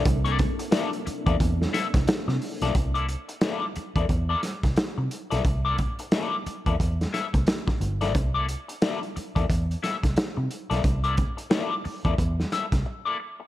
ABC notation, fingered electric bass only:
X:1
M:4/4
L:1/16
Q:"Swing 16ths" 1/4=89
K:Cmix
V:1 name="Fingered electric bass" clef=bass
C,,3 z4 E,, E,,2 z C,, z C, z =B,,, | C,,3 z4 E,, E,,2 z C,, z C, z =B,,, | C,,3 z4 E,, E,,2 z C,, z2 G,,,2 | C,,3 z4 E,, E,,2 z C,, z C, z =B,,, |
C,,3 z4 E,, E,,2 z C,, z4 |]